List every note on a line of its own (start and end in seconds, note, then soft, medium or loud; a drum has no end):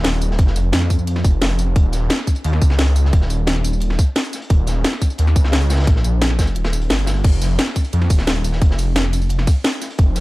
0.00 0.37 D#1 loud
0.00 snare loud
0.04 snare loud
0.04 closed hi-hat loud
0.04 closed hi-hat medium
0.13 tambourine soft
0.21 closed hi-hat medium
0.21 tambourine medium
0.31 snare soft
0.38 0.72 F1 loud
0.38 kick loud
0.38 closed hi-hat medium
0.47 snare medium
0.56 closed hi-hat medium
0.56 tambourine medium
0.73 1.23 F2 loud
0.73 snare loud
0.73 closed hi-hat medium
0.82 snare soft
0.90 kick medium
0.90 closed hi-hat medium
0.90 open hi-hat medium
0.90 tambourine medium
0.99 tambourine soft
1.07 closed hi-hat medium
1.15 snare soft
1.24 1.75 F1 loud
1.24 kick loud
1.24 closed hi-hat medium
1.24 tambourine medium
1.42 snare loud
1.42 closed hi-hat medium
1.50 tambourine soft
1.59 closed hi-hat medium
1.59 tambourine medium
1.76 2.09 D#1 loud
1.76 kick loud
1.76 closed hi-hat medium
1.93 snare soft
1.93 closed hi-hat medium
1.93 tambourine medium
2.10 snare loud
2.10 closed hi-hat medium
2.10 open hi-hat medium
2.19 snare soft
2.27 kick medium
2.27 closed hi-hat medium
2.27 tambourine medium
2.35 closed hi-hat soft
2.35 tambourine soft
2.44 2.60 D#2 loud
2.44 closed hi-hat medium
2.53 snare soft
2.62 3.12 C#2 loud
2.62 kick loud
2.62 closed hi-hat medium
2.62 tambourine medium
2.70 snare medium
2.70 snare soft
2.79 snare loud
2.79 closed hi-hat medium
2.87 tambourine soft
2.96 closed hi-hat medium
2.96 tambourine medium
3.05 snare medium
3.13 3.97 D#1 loud
3.13 kick loud
3.13 closed hi-hat medium
3.13 closed hi-hat loud
3.21 snare medium
3.30 closed hi-hat medium
3.30 tambourine medium
3.47 snare loud
3.47 closed hi-hat medium
3.47 closed hi-hat loud
3.56 snare soft
3.56 closed hi-hat soft
3.64 closed hi-hat medium
3.64 open hi-hat medium
3.64 tambourine medium
3.73 tambourine soft
3.80 closed hi-hat medium
3.90 snare soft
3.99 kick loud
3.99 closed hi-hat medium
3.99 tambourine medium
4.16 snare loud
4.16 closed hi-hat medium
4.24 tambourine soft
4.33 snare soft
4.33 closed hi-hat medium
4.33 tambourine medium
4.42 closed hi-hat medium
4.50 4.83 D#1 loud
4.50 kick loud
4.50 closed hi-hat loud
4.67 snare soft
4.67 closed hi-hat medium
4.67 tambourine medium
4.84 snare loud
4.84 closed hi-hat loud
4.84 open hi-hat medium
4.93 snare soft
5.02 kick medium
5.02 closed hi-hat medium
5.02 tambourine medium
5.10 closed hi-hat soft
5.10 tambourine soft
5.18 5.35 D#2 loud
5.18 closed hi-hat medium
5.18 closed hi-hat loud
5.27 snare soft
5.36 5.86 C#2 loud
5.36 kick loud
5.36 closed hi-hat medium
5.36 tambourine medium
5.44 snare medium
5.44 snare soft
5.52 snare loud
5.52 closed hi-hat medium
5.62 tambourine soft
5.70 snare medium
5.70 closed hi-hat medium
5.70 open hi-hat medium
5.70 tambourine medium
5.74 snare medium
5.74 open hi-hat medium
5.79 snare loud
5.79 open hi-hat medium
5.83 snare medium
5.83 open hi-hat medium
5.87 6.03 A#1 loud
5.87 kick loud
5.87 closed hi-hat loud
5.87 closed hi-hat medium
5.96 snare medium
6.04 6.54 A#1 loud
6.04 closed hi-hat medium
6.04 tambourine medium
6.22 snare loud
6.22 closed hi-hat loud
6.30 snare soft
6.30 closed hi-hat soft
6.39 kick medium
6.39 snare loud
6.39 closed hi-hat medium
6.39 open hi-hat medium
6.39 tambourine medium
6.47 tambourine soft
6.55 6.89 D#1 loud
6.55 closed hi-hat medium
6.55 closed hi-hat loud
6.64 snare loud
6.64 snare soft
6.64 closed hi-hat medium
6.73 closed hi-hat soft
6.73 closed hi-hat medium
6.73 tambourine medium
6.82 closed hi-hat medium
6.89 7.23 G1 loud
6.89 snare loud
6.89 closed hi-hat loud
6.89 open hi-hat medium
6.99 closed hi-hat soft
6.99 tambourine soft
7.06 snare loud
7.06 closed hi-hat medium
7.06 open hi-hat medium
7.06 tambourine medium
7.16 closed hi-hat medium
7.24 7.57 F1 loud
7.24 kick loud
7.24 closed hi-hat medium
7.24 closed hi-hat loud
7.24 crash medium
7.42 snare soft
7.42 closed hi-hat medium
7.42 ride medium
7.42 tambourine medium
7.59 snare loud
7.59 closed hi-hat loud
7.59 open hi-hat medium
7.67 snare soft
7.76 kick medium
7.76 closed hi-hat medium
7.76 ride medium
7.76 tambourine medium
7.84 closed hi-hat soft
7.84 tambourine soft
7.93 8.09 F2 loud
7.93 closed hi-hat medium
7.93 closed hi-hat loud
8.02 snare soft
8.10 8.60 D#1 loud
8.10 kick loud
8.10 closed hi-hat medium
8.10 ride medium
8.10 tambourine medium
8.18 snare medium
8.18 snare soft
8.27 snare loud
8.27 closed hi-hat loud
8.27 closed hi-hat medium
8.36 tambourine soft
8.44 closed hi-hat medium
8.44 ride medium
8.44 tambourine medium
8.52 snare medium
8.62 9.46 F1 loud
8.62 kick loud
8.62 closed hi-hat loud
8.62 closed hi-hat medium
8.71 snare medium
8.78 closed hi-hat medium
8.78 ride medium
8.78 tambourine medium
8.96 snare loud
8.96 closed hi-hat loud
8.96 closed hi-hat medium
9.04 snare soft
9.04 closed hi-hat soft
9.13 closed hi-hat medium
9.13 open hi-hat medium
9.13 ride medium
9.13 tambourine medium
9.22 tambourine soft
9.29 closed hi-hat medium
9.29 closed hi-hat loud
9.38 snare soft
9.47 kick loud
9.47 closed hi-hat medium
9.47 ride medium
9.47 tambourine medium
9.64 snare loud
9.64 closed hi-hat medium
9.73 tambourine soft
9.81 snare soft
9.81 closed hi-hat medium
9.81 ride medium
9.81 tambourine medium
9.91 closed hi-hat medium
9.98 10.20 F1 loud
9.98 kick loud
9.98 closed hi-hat medium
10.15 snare soft
10.15 closed hi-hat medium
10.15 ride medium
10.15 tambourine medium